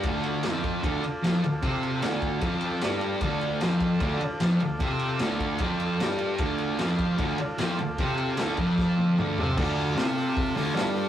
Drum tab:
CC |--------|--------|--------|--------|
RD |xxxxxxxx|xxxxxxxx|xxxxxxxx|xxxxxxxx|
HH |--------|--------|--------|--------|
SD |--o---o-|--o---o-|--o---o-|--o---o-|
T1 |--------|--------|--------|--------|
T2 |--------|--------|--------|--------|
FT |--------|--------|--------|--------|
BD |o--oo---|o--oo---|o--oo---|o--oo---|

CC |--------|--------|x-------|
RD |xxxxxxxx|xxxx----|--------|
HH |--------|--------|-ooooooo|
SD |--o---o-|--o-o---|--o---o-|
T1 |--------|-----o--|--------|
T2 |--------|------o-|--------|
FT |--------|-------o|--------|
BD |o--oo---|o--oo---|o---o---|